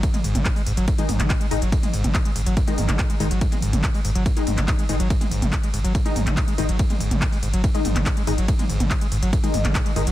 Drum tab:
RD |x---x---x---x---|x---x---x---x---|x---x---x---x---|x---x---x---x---|
HH |xxoxxooxxxoxxxox|xxoxxxoxxxoxxxox|xxoxxooxxxoxxxox|xxoxxxoxxxoxxxox|
CP |----x------xx---|----x------xx---|----x------xx---|----x------xx---|
T2 |-o-o------oo----|-o-o------oo----|-o-o------oo----|-o-o------oo----|
BD |o---o---o---o---|o---o---o---o---|o---o---o---o---|o---o---o---o---|

RD |x---x---x---x---|x---x---x---x---|
HH |xxoxxooxxxoxxxox|xxoxxxoxxxoxxxox|
CP |----x------xx---|----x------xx---|
T2 |-o-o------oo----|-o-o------oo----|
BD |o---o---o---o---|o---o---o---o---|